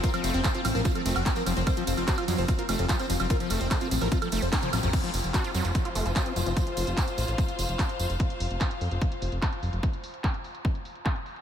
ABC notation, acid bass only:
X:1
M:4/4
L:1/16
Q:1/4=147
K:F
V:1 name="Acid bass" clef=bass
F F, A, C A, F F, F, F F, A, z A, F, F, F, | F, F, z2 _G F _G, F, z F A, F, G, C F, F, | F F, A, C A, F F, F, F F, A, z A, F, F, F, | F, F, z2 _G F _G, F, z F A, F, G, C F, F, |
z16 | z16 | z16 |]